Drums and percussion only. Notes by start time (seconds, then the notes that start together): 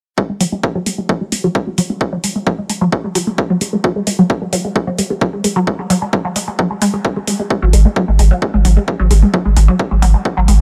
0.18 kick
0.41 open hi-hat
0.63 kick
0.86 open hi-hat
1.09 kick
1.32 open hi-hat
1.55 kick
1.78 open hi-hat
2.01 kick
2.24 open hi-hat
2.47 kick
2.70 open hi-hat
2.92 kick
3.15 open hi-hat
3.38 kick
3.61 open hi-hat
3.84 kick
4.07 open hi-hat
4.30 kick
4.53 open hi-hat
4.76 kick
4.99 open hi-hat
5.21 kick
5.44 open hi-hat
5.67 kick
5.90 open hi-hat
6.13 kick
6.36 open hi-hat
6.59 kick
6.82 open hi-hat
7.05 kick
7.27 open hi-hat
7.50 kick
7.73 open hi-hat
7.96 kick
8.19 open hi-hat
8.42 kick
8.65 open hi-hat
8.88 kick
9.11 open hi-hat
9.34 kick
9.57 open hi-hat
9.79 kick
10.02 open hi-hat
10.25 kick
10.48 open hi-hat